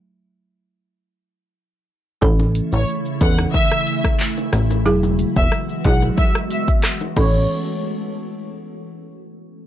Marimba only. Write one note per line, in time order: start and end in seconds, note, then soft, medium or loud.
2.21 2.83 E3 medium
2.21 2.83 C#4 medium
2.21 2.83 A4 loud
3.21 3.42 E3 medium
3.21 3.42 C#4 medium
3.21 3.42 A4 medium
4.86 5.47 F#3 medium
4.86 5.47 E4 medium
4.86 5.47 G#4 loud
5.85 6.06 F#3 medium
5.85 6.06 E4 medium
5.85 6.06 G#4 medium
7.16 7.41 E3 medium
7.16 7.42 C#4 medium
7.16 7.42 A4 medium